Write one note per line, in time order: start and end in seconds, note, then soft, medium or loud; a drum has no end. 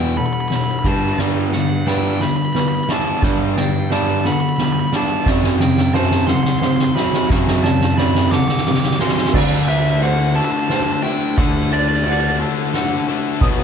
0.00 0.14 E2 medium
0.00 0.20 E2 medium
0.00 0.15 B2 loud
0.00 0.49 D3 medium
0.00 0.15 E3 medium
0.00 0.84 E3 medium
0.00 0.85 G3 medium
0.00 0.17 D5 medium
0.00 0.18 G5 medium
0.16 0.47 E2 medium
0.16 0.47 B2 medium
0.16 0.84 B3 medium
0.16 0.84 A4 medium
0.16 0.25 B5 medium
0.26 0.32 B5 medium
0.33 0.40 B5 medium
0.40 0.48 B5 medium
0.48 0.81 E2 medium
0.48 0.81 B2 medium
0.48 0.84 D3 medium
0.48 0.55 B5 medium
0.48 snare medium
0.48 ride medium
0.56 0.63 B5 medium
0.64 0.71 B5 medium
0.71 0.79 B5 medium
0.79 0.87 B5 medium
0.84 1.11 G2 medium
0.84 1.17 G2 medium
0.84 1.17 D3 medium
0.84 1.19 G3 medium
0.84 1.17 G3 medium
0.84 1.17 A5 medium
0.84 kick loud
0.84 crash medium
1.18 1.50 G2 medium
1.18 2.24 G2 loud
1.18 1.51 D3 medium
1.18 1.51 G3 medium
1.18 2.53 G3 medium
1.18 1.51 G3 medium
1.18 1.51 B3 medium
1.18 1.51 D4 loud
1.18 1.87 D5 medium
1.18 snare medium
1.52 1.83 G2 medium
1.52 1.84 D3 medium
1.52 1.83 G3 medium
1.52 1.84 B3 medium
1.52 1.86 D4 medium
1.52 1.87 F#5 medium
1.52 snare medium
1.86 2.19 G2 loud
1.86 2.19 D3 loud
1.86 2.18 G3 medium
1.86 2.19 G3 loud
1.86 2.18 B3 medium
1.86 2.88 D4 medium
1.86 2.19 D4 loud
1.86 2.54 B4 medium
1.86 2.22 G5 medium
1.86 snare medium
1.86 ride medium
2.21 2.51 G2 medium
2.21 2.52 D3 medium
2.21 2.51 G3 medium
2.21 2.51 B3 medium
2.21 2.29 B5 loud
2.21 snare medium
2.29 2.36 B5 medium
2.36 2.44 B5 medium
2.45 2.53 B5 medium
2.53 2.85 G2 medium
2.53 2.85 D3 medium
2.53 3.22 G3 medium
2.53 2.85 G3 medium
2.53 2.85 B3 medium
2.53 2.89 B4 medium
2.53 2.59 B5 medium
2.53 snare medium
2.53 ride medium
2.60 2.67 B5 medium
2.68 2.75 B5 medium
2.75 2.83 B5 medium
2.83 2.91 B5 medium
2.89 3.21 G2 loud
2.89 3.21 D3 loud
2.89 3.21 G3 medium
2.89 3.21 B3 medium
2.89 3.56 D4 medium
2.89 3.21 D4 medium
2.89 3.57 E5 medium
2.89 3.21 A5 medium
2.89 snare medium
3.23 4.28 G2 loud
3.23 3.55 G2 medium
3.23 3.55 D3 medium
3.23 3.55 G3 medium
3.23 4.57 G3 medium
3.23 3.55 G3 medium
3.23 3.55 B3 medium
3.23 3.55 D4 loud
3.23 kick loud
3.23 snare medium
3.57 3.88 G2 medium
3.57 3.88 D3 medium
3.57 3.87 G3 medium
3.57 3.87 B3 medium
3.57 3.90 D4 medium
3.57 3.90 D5 medium
3.57 3.89 G5 medium
3.57 snare medium
3.90 4.23 G2 medium
3.90 4.23 D3 loud
3.90 4.22 G3 medium
3.90 4.23 G3 loud
3.90 4.23 B3 medium
3.90 4.23 D4 medium
3.90 4.91 D4 medium
3.90 4.25 D5 medium
3.90 4.27 A5 medium
3.90 snare medium
4.24 4.55 G2 medium
4.24 4.56 D3 medium
4.24 4.55 G3 medium
4.24 4.55 B3 medium
4.24 5.63 F#4 medium
4.24 4.93 A4 medium
4.24 4.32 B5 loud
4.24 snare medium
4.32 4.40 B5 medium
4.40 4.48 B5 medium
4.49 4.56 B5 medium
4.57 4.89 G2 medium
4.57 4.90 D3 medium
4.57 5.26 G3 medium
4.57 4.89 G3 medium
4.57 4.89 B3 medium
4.57 4.64 B5 medium
4.57 snare loud
4.64 4.72 B5 medium
4.72 4.79 B5 medium
4.79 4.87 B5 medium
4.87 4.95 B5 medium
4.92 5.24 G2 medium
4.92 5.25 D3 loud
4.92 5.24 G3 medium
4.92 5.25 G3 loud
4.92 5.25 B3 medium
4.92 5.27 D4 medium
4.92 5.25 D4 loud
4.92 5.25 A5 medium
4.92 snare loud
5.26 6.32 F#2 medium
5.26 5.59 F#2 medium
5.26 5.59 C#3 medium
5.26 5.58 F#3 medium
5.26 6.62 F#3 medium
5.26 5.59 F#3 medium
5.26 5.58 C4 loud
5.26 5.58 F#4 loud
5.26 5.95 D5 loud
5.26 kick loud
5.26 snare medium
5.43 snare loud
5.60 5.91 F#2 medium
5.60 5.92 C#3 medium
5.60 5.91 F#3 medium
5.60 5.94 C4 medium
5.60 5.91 C4 medium
5.60 5.92 G5 medium
5.60 snare loud
5.77 snare loud
5.94 6.27 F#2 medium
5.94 6.27 C#3 medium
5.94 6.26 F#3 loud
5.94 6.27 F#3 loud
5.94 6.26 C4 loud
5.94 6.95 C4 medium
5.94 6.27 F#4 medium
5.94 6.60 C5 medium
5.94 6.29 A5 medium
5.94 snare medium
6.11 snare loud
6.27 6.60 F#2 medium
6.27 6.60 C#3 medium
6.27 6.59 F#3 medium
6.27 6.59 C4 medium
6.27 7.98 F#4 medium
6.27 6.35 C6 loud
6.27 snare loud
6.35 6.43 C6 medium
6.43 6.50 C6 loud
6.43 snare loud
6.51 6.58 C6 medium
6.59 6.93 F#3 medium
6.59 7.29 F#3 medium
6.59 6.93 C4 medium
6.59 6.96 C5 medium
6.59 6.66 C6 loud
6.59 snare loud
6.63 6.94 F#2 medium
6.63 6.94 C#3 medium
6.63 6.75 C6 medium
6.76 6.84 C6 medium
6.76 snare loud
6.84 6.93 C6 medium
6.96 7.29 F#2 medium
6.96 7.29 C#3 loud
6.96 7.28 F#3 medium
6.96 7.29 F#3 loud
6.96 7.28 C4 medium
6.96 7.63 C4 medium
6.96 7.28 F#4 loud
6.96 7.64 E5 medium
6.96 7.28 B5 medium
6.96 snare loud
7.13 snare loud
7.30 8.36 F#2 medium
7.30 7.63 F#2 medium
7.30 7.63 C#3 loud
7.30 7.62 F#3 medium
7.30 8.65 F#3 medium
7.30 7.63 F#3 loud
7.30 7.62 C4 medium
7.30 7.63 F#4 loud
7.30 kick loud
7.30 snare loud
7.47 snare loud
7.64 7.95 F#2 medium
7.64 7.95 C#3 medium
7.64 7.95 F#3 medium
7.64 7.95 C4 medium
7.64 7.97 C4 medium
7.64 7.97 D5 medium
7.64 7.96 A5 medium
7.64 snare loud
7.81 snare loud
7.97 8.31 F#2 medium
7.97 8.31 C#3 loud
7.97 8.30 F#3 medium
7.97 8.31 F#3 loud
7.97 8.99 C4 medium
7.97 8.30 C4 loud
7.97 8.30 F#4 loud
7.97 8.33 D5 medium
7.97 8.29 B5 medium
7.97 snare loud
8.15 snare loud
8.31 8.63 F#2 medium
8.31 8.64 C#3 medium
8.31 8.63 F#3 medium
8.31 8.63 C4 medium
8.31 9.34 F#4 medium
8.31 9.00 A4 medium
8.31 8.39 D6 loud
8.31 snare loud
8.40 8.47 D6 medium
8.48 8.55 D6 medium
8.48 snare loud
8.55 8.63 D6 medium
8.55 snare loud
8.63 8.97 F#2 medium
8.63 9.34 F#3 medium
8.63 8.97 F#3 medium
8.63 8.97 C4 medium
8.63 8.71 D6 medium
8.63 snare loud
8.67 8.97 C#3 medium
8.72 8.80 D6 medium
8.72 snare loud
8.80 8.88 D6 medium
8.80 snare loud
8.88 8.96 D6 medium
8.88 snare loud
8.99 9.32 F#2 medium
8.99 9.32 C#3 medium
8.99 9.32 F#3 medium
8.99 9.33 F#3 loud
8.99 9.34 C4 medium
8.99 9.32 C4 medium
8.99 9.32 F#4 loud
8.99 9.32 C6 medium
8.99 snare loud
9.08 snare loud
9.17 snare loud
9.25 snare loud
9.34 10.40 D2 loud
9.34 11.04 D3 medium
9.34 9.67 D3 medium
9.34 9.68 A3 loud
9.34 9.68 D4 loud
9.34 10.02 D5 loud
9.34 kick loud
9.34 crash loud
9.68 10.02 D3 medium
9.68 10.02 A3 loud
9.68 10.02 D4 loud
9.68 10.00 E5 loud
9.68 ride medium
10.02 10.34 D3 medium
10.02 10.35 A3 medium
10.02 10.35 D4 medium
10.02 12.06 F#4 medium
10.02 10.69 C5 medium
10.02 10.34 F#5 loud
10.02 ride medium
10.36 10.69 D3 medium
10.36 10.69 A3 medium
10.36 10.70 D4 medium
10.36 12.06 A4 medium
10.36 10.44 A5 loud
10.45 10.52 A5 medium
10.52 10.59 A5 loud
10.59 10.67 A5 loud
10.68 11.02 D3 loud
10.68 11.03 A3 loud
10.68 11.03 D4 loud
10.68 11.04 C5 medium
10.68 10.75 A5 loud
10.68 snare medium
10.68 ride medium
10.76 10.83 A5 medium
10.83 10.91 A5 loud
10.93 11.01 A5 medium
11.03 11.36 D3 medium
11.03 11.37 D3 medium
11.03 11.37 A3 loud
11.03 11.37 D4 loud
11.03 11.72 E5 medium
11.03 11.35 G5 loud
11.38 12.43 D2 loud
11.38 11.70 D3 loud
11.38 13.06 D3 medium
11.38 11.71 A3 medium
11.38 11.71 D4 loud
11.38 11.73 F#5 loud
11.38 kick loud
11.38 ride medium
11.71 12.04 D3 medium
11.71 12.04 A3 medium
11.71 12.04 D4 loud
11.71 12.04 D5 medium
11.71 11.79 D5 medium
11.71 ride medium
11.79 11.87 D5 medium
11.88 11.96 D5 medium
11.96 12.04 D5 medium
12.04 12.38 D3 medium
12.04 12.38 A3 loud
12.04 12.39 D4 loud
12.04 12.74 F#4 medium
12.04 12.12 D5 medium
12.04 12.40 D5 medium
12.04 ride medium
12.12 12.20 D5 medium
12.20 12.28 D5 medium
12.28 12.36 D5 medium
12.39 12.72 D3 medium
12.39 12.73 A3 medium
12.39 12.73 D4 loud
12.39 13.08 A4 medium
12.39 13.42 A4 medium
12.74 13.06 D3 loud
12.74 13.07 A3 loud
12.74 13.07 D4 loud
12.74 13.64 F#4 medium
12.74 snare medium
12.74 ride medium
13.08 13.40 D3 loud
13.08 13.42 D3 medium
13.08 13.40 A3 medium
13.08 13.40 D4 loud
13.41 13.64 B1 loud
13.41 13.64 B2 medium
13.41 13.64 F#3 loud
13.41 13.64 B3 loud
13.41 13.64 D#6 loud
13.41 kick loud
13.41 ride medium